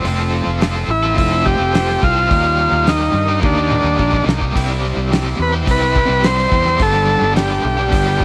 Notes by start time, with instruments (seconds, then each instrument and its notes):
0.04 fingered electric bass F1, overdriven electric guitar F3 C4 F4, open hi-hat
0.09 overdriven electric guitar A4
0.19 overdriven electric guitar C4 F4 A4
0.47 fingered electric bass F1
0.61 overdriven electric guitar F3 C4 F4 A4, snare, open hi-hat
0.75 overdriven electric guitar C4 F4 A4
0.88 fingered electric bass A1, transistor combo organ E4, muted overdriven electric guitar stroke
1.03 overdriven electric guitar C4 F4 A4
1.18 fingered electric bass F1, transistor combo organ E4, kick, open hi-hat
1.31 overdriven electric guitar C4 F4 A4
1.44 overdriven electric guitar F3 C4 F4 A4, transistor combo organ G4, kick
1.60 fingered electric bass F1
1.73 overdriven electric guitar F3 C4 F4 A4, snare, open hi-hat
1.88 overdriven electric guitar C4 F4 A4, snare
2.02 fingered electric bass C2, overdriven electric guitar F3 C4 F4 A4, transistor combo organ F4, kick
2.16 overdriven electric guitar C4 F4 A4
2.29 fingered electric bass D#2, overdriven electric guitar D#3 G3 A#3 D#4 G4, kick, open hi-hat
2.43 overdriven electric guitar A#3 D#4 G4
2.72 fingered electric bass D#2
2.86 overdriven electric guitar D#3 G3 A#3 D#4 G4, transistor combo organ D#4, snare, open hi-hat
3.00 overdriven electric guitar A#3 D#4 G4
3.13 fingered electric bass G2, muted overdriven electric guitar stroke
3.28 overdriven electric guitar A#3 D#4 G4
3.43 fingered electric bass D#2, transistor combo organ D4, kick, high tom
3.56 overdriven electric guitar A#3 D#4 G4
3.71 overdriven electric guitar G3 A#3 D#4 G4, mid tom
3.84 fingered electric bass D#2
3.97 fingered electric bass A#1, overdriven electric guitar D#3 G3 A#3 D#4 G4, kick
4.12 overdriven electric guitar A#3 D#4 G4, kick
4.26 fingered electric bass C2, overdriven electric guitar G3 A#3 D#4, snare
4.30 overdriven electric guitar G4
4.40 overdriven electric guitar A#3 D#4 G4, kick
4.54 fingered electric bass C2, overdriven electric guitar C3 G3 C4 E4 G4, kick, open hi-hat, crash
4.69 overdriven electric guitar C4 E4 G4
4.97 fingered electric bass C2
5.11 overdriven electric guitar C3 G3 C4 E4 G4, snare, open hi-hat
5.24 overdriven electric guitar C4 E4 G4
5.39 fingered electric bass E2, transistor combo organ B4, muted overdriven electric guitar stroke
5.53 overdriven electric guitar C4 E4 G4
5.67 fingered electric bass C2, transistor combo organ B4, kick, open hi-hat
5.80 overdriven electric guitar C4 E4 G4
5.95 overdriven electric guitar G3 C4 E4 G4, kick
6.09 fingered electric bass C2
6.22 overdriven electric guitar C3 G3 C4 E4 G4, transistor combo organ C5, snare, open hi-hat
6.37 overdriven electric guitar C4 E4 G4, snare
6.50 fingered electric bass E2, overdriven electric guitar G3 C4 E4 G4, kick
6.66 overdriven electric guitar C4 E4 G4, snare
6.79 fingered electric bass G1, overdriven electric guitar G2 D3 G3 B3 D4, transistor combo organ A4, kick, open hi-hat
6.83 overdriven electric guitar G4
6.93 overdriven electric guitar G3 B3 D4 G4
7.21 fingered electric bass G1
7.35 overdriven electric guitar G2 D3 G3 B3 D4 G4, transistor combo organ G4, snare, open hi-hat
7.49 overdriven electric guitar G3 B3 D4 G4
7.64 fingered electric bass B1, muted overdriven electric guitar stroke
7.77 overdriven electric guitar G3 B3 D4 G4
7.92 fingered electric bass G1, kick, open hi-hat
8.05 overdriven electric guitar G3 B3 D4 G4
8.20 overdriven electric guitar G3 B3, kick